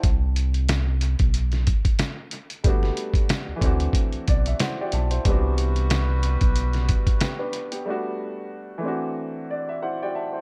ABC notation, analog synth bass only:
X:1
M:4/4
L:1/16
Q:"Swing 16ths" 1/4=92
K:G
V:1 name="Analog synth bass" clef=bass
C,,6- C,, B,,,4 z4 z | G,,,2 z3 D,, D,,2 z B,,, B,,,2 z2 B,,,2 | C,,6- C,, B,,,4 z4 z | z16 |]